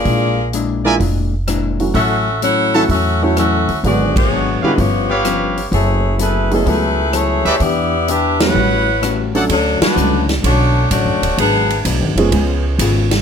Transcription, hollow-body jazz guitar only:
X:1
M:4/4
L:1/8
Q:"Swing" 1/4=127
K:Dlyd
V:1 name="Hollow-body jazz guitar"
[^A,,G,DE] z [A,,G,DE] z [A,,G,DE] z [A,,G,DE] z | [A,,F,CE] z [A,,F,CE] z [A,,F,CE] z [A,,F,CE] z | [G,,F,B,D] z [G,,F,B,D] z [=G,,=F,B,C] z [G,,F,B,C] z | [F,B,EA] z [F,B,EA] z [F,B,EA] z [F,B,EA] z |
[E,B,D=G] z [E,B,DG] z [A,,=G,CF] z [A,,G,CF] z | [D,F,A,C] z [D,F,A,C] z [D,F,A,C] z [D,F,A,C] z | [G,,F,B,D] z [G,,F,B,D] z [C,B,^EG] z [C,B,EG] z |]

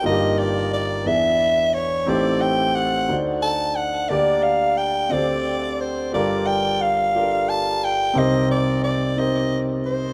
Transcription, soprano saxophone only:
X:1
M:6/8
L:1/8
Q:3/8=59
K:Gm
V:1 name="Soprano saxophone"
e d d =e2 ^c | d g ^f z a f | d f g d2 c | d g f2 a g |
e d d e z c |]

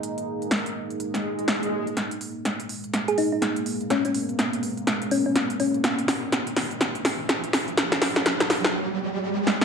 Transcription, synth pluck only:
X:1
M:4/4
L:1/16
Q:"Swing 16ths" 1/4=124
K:G#m
V:1 name="Synth pluck"
z16 | z8 z G D D z4 | C C z8 C C z2 C2- | C2 z12 z2 |
z16 |]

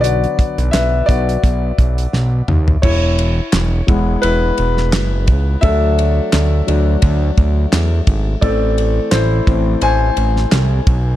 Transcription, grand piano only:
X:1
M:4/4
L:1/8
Q:"Swing 16ths" 1/4=86
K:Emix
V:1 name="Grand piano"
[Fd]2 [Be] [Fd]4 z | [Ec]4 [EB]4 | [Ae]6- [Ae] z | [Ad]2 [E=c]2 [cg]4 |]
V:2 name="Grand piano"
[D,F,B,] z6 z | z3 [G,B,E]3 z2 | [F,A,D]3 [F,A,D] z4 | [E,A,=C]3 [E,A,C] z4 |]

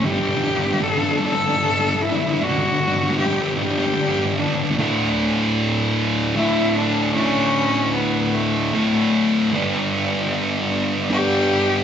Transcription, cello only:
X:1
M:6/8
L:1/8
Q:3/8=51
K:Glyd
V:1 name="Cello"
G2 A A2 E | F2 G G2 D | z4 E D | C2 B, A,2 z |
z4 G2 |]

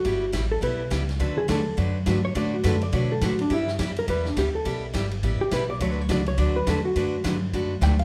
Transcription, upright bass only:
X:1
M:4/4
L:1/8
Q:"Swing" 1/4=208
K:D
V:1 name="Upright bass" clef=bass
G,,,2 A,,,2 B,,,2 C,,2 | D,,2 E,,2 F,,2 G,,2 | A,,2 F,,2 B,,2 A,,2 | G,,2 F,,2 E,,2 D,,2 |
B,,,2 G,,,2 A,,, z B,,,2 | D,,2 C,,2 D,,2 E,,2 | F,,2 G,,2 F,,2 D,,2 |]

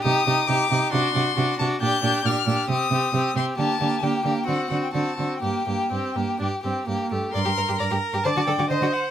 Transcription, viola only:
X:1
M:4/4
L:1/8
Q:1/4=134
K:Gm
V:1 name="Viola"
E E E E D D D D | D D D D C C C C | B, B, B, B, C C C C | B, B, C B, D C B, A, |
B4 d2 c2 |]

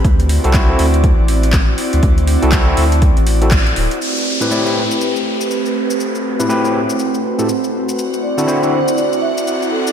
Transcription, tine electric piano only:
X:1
M:4/4
L:1/16
Q:"Swing 16ths" 1/4=121
K:Ador
V:1 name="Tine electric piano"
z3 [CEFA] [CEFc] [CEFA] z8 z2 | z3 [CEFA] [CEFA] [CEFA] z4 z [CEFA] z4 | z3 [A,,CEGB] [A,,CEGd] [A,,CEGB] z8 z2 | z3 [A,,CEGB] [A,,CEGB] [A,,CEGB] z4 z [A,,CEGA] z4 |
z3 [D,CEFA] [D,CEFc] [D,CEFA] z8 z2 |]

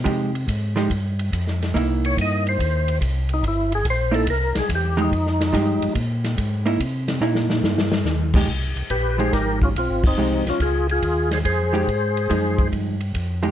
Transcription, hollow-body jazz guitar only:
X:1
M:4/4
L:1/8
Q:"Swing" 1/4=142
K:Fm
V:1 name="Hollow-body jazz guitar"
[F,A,EG] z2 [F,A,EG] z4 | [B,^D=E]4- [B,DE] z3 | z3 [B,^D=E] z3 [F,A,DG] | z2 [F,A,EG]2 z3 [B,E=E] |
z2 [B,^D=E]3 z2 [F,A,DG] | z3 [F,A,EG]3 z2 | [F,A,EG] z6 [F,A,EG] | z2 [F,A,E]3 z2 [F,A,EG] |]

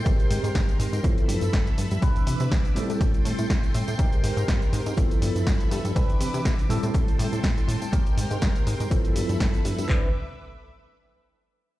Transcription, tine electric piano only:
X:1
M:4/4
L:1/8
Q:"Swing 16ths" 1/4=122
K:C
V:1 name="Tine electric piano"
[_A,CG_B]4 [F,=B,E=A]4 | [E,CDB]3 [G,CEA]4- [G,CEA] | [_A,CG_B]4 [F,=B,E=A]4 | [E,CDB]3 [G,CEA]4- [G,CEA] |
[_A,CG_B]4 [F,=B,E=A]4 | [E,CDB] z6 z |]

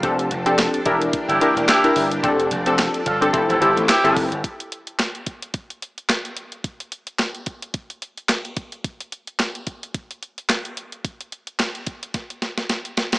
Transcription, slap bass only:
X:1
M:4/4
L:1/16
Q:"Swing 16ths" 1/4=109
K:F
V:1 name="Slap bass" clef=bass
F,,,2 F,,,3 z E,,,2 z G,,, z E,,, z2 G,,,2 | F,,,2 F,,,3 z G,,,2 F,,, E,,, G,,, A,,, z G,,, F,,, G,,, | z16 | z16 |
z16 | z16 |]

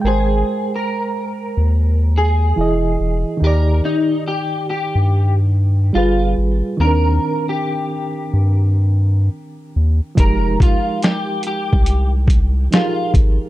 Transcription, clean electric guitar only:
X:1
M:4/4
L:1/16
Q:"Swing 16ths" 1/4=71
K:Cm
V:1 name="Clean electric guitar"
A3 B6- B A6 | B2 E2 G2 G3 z3 F2 z2 | B3 G6 z6 z | B2 F2 G2 G3 z3 F2 z2 |]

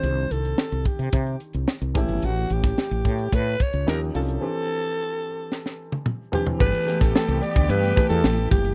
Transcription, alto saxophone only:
X:1
M:4/4
L:1/16
Q:1/4=110
K:G
V:1 name="Alto saxophone"
c2 A4 G4 z4 E2 | F2 G6 B2 ^c2 _B2 A2- | A12 z2 G2 | B3 A A2 d2 B3 A3 G2 |]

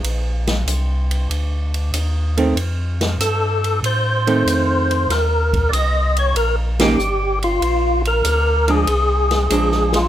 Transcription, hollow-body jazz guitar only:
X:1
M:4/4
L:1/8
Q:"Swing" 1/4=95
K:Fdor
V:1 name="Hollow-body jazz guitar"
z6 z [E,=A,C] | z4 z [E,=A,C]3 | z4 z [E,B,_DG] z2 | z3 [F,A,D] z2 [F,A,D]2 |]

